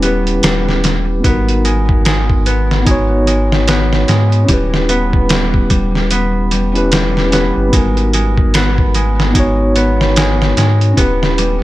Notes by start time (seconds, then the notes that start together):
Already playing: D#1 G3 G4 B4
0.00 B3 C#4 E4, closed hi-hat
0.04 G4 B4
0.27 closed hi-hat
0.43 D#1 G3, snare, closed hi-hat
0.69 snare
0.83 G3, snare, closed hi-hat
1.20 B3 D#4
1.24 G#1 F#4, kick, closed hi-hat
1.29 A#4
1.49 closed hi-hat
1.65 G#3, closed hi-hat
1.89 kick
2.05 G#3, snare, closed hi-hat
2.30 kick
2.46 B3, closed hi-hat
2.71 snare
2.82 G#3 B3 D#4
2.87 F#4, kick, closed hi-hat
2.91 C#5
3.27 G#3, closed hi-hat
3.52 snare
3.68 B3, snare, closed hi-hat
3.93 snare
4.08 G#2 G#3, snare, closed hi-hat
4.32 closed hi-hat
4.45 C#4 E4, kick, closed hi-hat
4.49 D#1 G3 G4
4.53 B4
4.74 snare
4.89 B3, closed hi-hat
5.13 kick
5.29 G3, snare, closed hi-hat
5.54 kick
5.70 G3, kick, closed hi-hat
5.95 snare
6.11 B3, closed hi-hat
6.51 E1 G3, closed hi-hat
6.74 C#4 E4 G4, closed hi-hat
6.78 B4
6.92 G3, snare, closed hi-hat
7.17 snare
7.31 B3 C#4 E4 G4, snare, closed hi-hat
7.35 B4
7.57 G1
7.69 B3 D#4
7.73 G#1 G#3 F#4, kick, closed hi-hat
7.97 closed hi-hat
8.13 G#3, closed hi-hat
8.38 kick
8.54 B3, snare, closed hi-hat
8.78 kick
8.94 G#3, closed hi-hat
9.20 snare
9.31 B3 D#4
9.35 G#3 F#4, kick, closed hi-hat
9.40 C#5
9.76 B3, closed hi-hat
10.01 snare
10.16 G#3, snare, closed hi-hat
10.42 snare
10.57 G#2 G#3, snare, closed hi-hat
10.81 closed hi-hat
10.93 C#4 E4
10.97 D#1 B3 G4, kick, closed hi-hat
11.01 B4
11.23 snare
11.38 G3, closed hi-hat